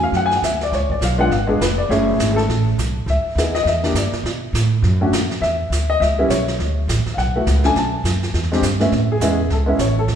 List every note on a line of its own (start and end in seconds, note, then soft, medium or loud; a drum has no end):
0.00 0.11 E2 medium
0.00 0.35 F#3 medium
0.00 0.35 A3 medium
0.00 0.35 C#4 medium
0.00 0.36 E4 medium
0.00 0.14 F5 medium
0.12 0.41 F#2 medium
0.12 brush sweep soft
0.12 snare soft
0.17 0.24 F#5 medium
0.26 0.34 G#5 medium
0.31 snare soft
0.37 0.44 F#5 medium
0.42 0.71 D2 medium
0.42 0.60 E5 medium
0.42 snare medium
0.42 hi-hat pedal medium
0.61 0.73 D5 medium
0.61 snare soft
0.72 1.00 C#2 medium
0.72 0.90 C#5 medium
0.72 brush sweep soft
0.72 snare soft
0.90 1.02 D5 medium
0.90 kick medium
1.01 1.29 B1 loud
1.01 1.19 F5 medium
1.01 snare medium
1.01 hi-hat pedal medium
1.18 1.29 G#3 medium
1.18 1.29 B3 medium
1.18 1.30 D4 medium
1.18 1.29 F4 medium
1.18 1.31 F#5 medium
1.29 1.59 G#1 medium
1.29 1.49 F5 medium
1.29 brush sweep soft
1.29 snare soft
1.47 1.58 G#3 medium
1.47 1.59 B3 medium
1.47 1.59 D4 medium
1.47 1.59 G#4 medium
1.60 1.88 F1 medium
1.60 1.77 B4 medium
1.60 snare medium
1.60 hi-hat pedal medium
1.78 1.89 D5 medium
1.89 2.18 F#1 medium
1.89 2.71 A3 medium
1.89 2.71 C#4 medium
1.89 2.72 E4 medium
1.89 2.31 G#4 medium
1.89 2.34 C#5 medium
1.89 brush sweep soft
1.89 snare soft
2.19 2.47 G#1 medium
2.19 snare medium
2.19 hi-hat pedal medium
2.32 2.34 G#4 medium
2.36 2.64 A4 medium
2.36 snare soft
2.48 2.77 A1 medium
2.48 brush sweep soft
2.48 snare soft
2.78 3.06 B1 medium
2.78 snare medium
2.78 hi-hat pedal medium
3.06 3.23 C#2 medium
3.06 3.52 E5 medium
3.06 brush sweep soft
3.06 snare soft
3.24 muted upright bass stroke soft
3.35 3.64 D#2 medium
3.35 3.53 B3 medium
3.35 3.53 D#4 soft
3.35 3.53 E4 soft
3.35 3.53 G#4 medium
3.35 snare medium
3.35 hi-hat pedal medium
3.55 3.62 D#5 medium
3.55 snare soft
3.63 3.93 E2 medium
3.63 3.65 D#5 medium
3.63 brush sweep medium
3.63 snare soft
3.67 3.94 E5 medium
3.83 3.94 A#3 medium
3.83 3.94 D4 medium
3.83 3.94 E4 medium
3.83 3.94 G4 medium
3.83 snare soft
3.94 4.11 G2 medium
3.94 4.14 D5 medium
3.94 snare medium
3.94 hi-hat pedal medium
4.12 muted upright bass stroke soft
4.12 snare soft
4.23 4.52 B2 medium
4.23 brush sweep soft
4.23 snare soft
4.53 4.82 A2 medium
4.53 snare medium
4.53 hi-hat pedal medium
4.82 5.11 F#2 medium
4.82 brush sweep soft
4.82 snare soft
5.01 5.12 A3 medium
5.01 5.12 C#4 medium
5.01 5.12 D4 medium
5.01 5.12 F#4 medium
5.12 5.40 F2 medium
5.12 snare medium
5.12 hi-hat pedal soft
5.31 snare soft
5.41 5.69 E2 medium
5.41 5.85 E5 medium
5.41 brush sweep soft
5.41 snare soft
5.70 5.99 D2 medium
5.70 snare medium
5.70 hi-hat pedal medium
5.90 6.01 D#5 medium
6.00 6.28 C#2 medium
6.00 6.28 E5 medium
6.00 brush sweep soft
6.00 snare soft
6.19 6.29 G3 medium
6.19 6.29 B3 medium
6.19 6.29 C#4 medium
6.19 6.29 E4 medium
6.29 6.57 B1 medium
6.29 6.41 C#5 medium
6.29 snare medium
6.29 hi-hat pedal medium
6.48 snare soft
6.59 6.87 D2 medium
6.59 brush sweep soft
6.59 snare soft
6.88 7.04 A1 medium
6.88 snare medium
6.88 hi-hat pedal medium
7.05 muted upright bass stroke soft
7.05 snare soft
7.14 7.46 B1 medium
7.14 7.16 F5 medium
7.18 7.61 F#5 medium
7.18 brush sweep soft
7.18 snare soft
7.35 7.46 A3 medium
7.35 7.46 B3 medium
7.35 7.46 E4 medium
7.35 7.46 F#4 medium
7.46 7.74 C#2 medium
7.46 snare medium
7.46 hi-hat pedal soft
7.64 7.75 A3 medium
7.64 7.75 C#4 medium
7.64 7.75 D4 soft
7.64 7.75 A4 medium
7.64 7.76 G#5 medium
7.64 snare soft
7.75 8.03 B1 medium
7.75 8.31 A5 medium
7.75 brush sweep soft
7.75 snare soft
8.04 8.32 F#2 medium
8.04 snare medium
8.04 hi-hat pedal medium
8.23 snare soft
8.33 8.61 E2 medium
8.33 brush sweep soft
8.33 snare soft
8.43 snare soft
8.52 8.62 G#3 medium
8.52 8.62 C4 medium
8.52 8.63 D4 medium
8.52 8.63 G4 medium
8.52 snare soft
8.62 8.91 G2 medium
8.62 snare medium
8.62 hi-hat pedal medium
8.80 8.91 A2 medium
8.80 8.91 G#3 medium
8.80 8.91 B3 medium
8.80 8.91 C#4 medium
8.80 8.91 E4 medium
8.80 snare soft
8.91 9.19 A2 medium
8.91 brush sweep soft
8.91 snare soft
9.12 9.49 G#4 medium
9.20 9.49 E2 medium
9.20 9.37 G#3 medium
9.20 9.37 B3 medium
9.20 9.37 C#4 medium
9.20 9.37 E4 medium
9.20 snare medium
9.20 hi-hat pedal medium
9.50 9.78 C#2 medium
9.50 9.78 A4 medium
9.50 brush sweep soft
9.50 snare soft
9.66 9.78 G#3 medium
9.66 9.78 B3 medium
9.66 9.78 C#4 medium
9.66 9.78 E4 medium
9.78 10.07 A1 medium
9.78 9.97 C#5 medium
9.78 snare medium
9.78 hi-hat pedal medium
9.99 10.09 A4 medium
10.08 10.15 E1 medium
10.08 brush sweep soft
10.08 snare soft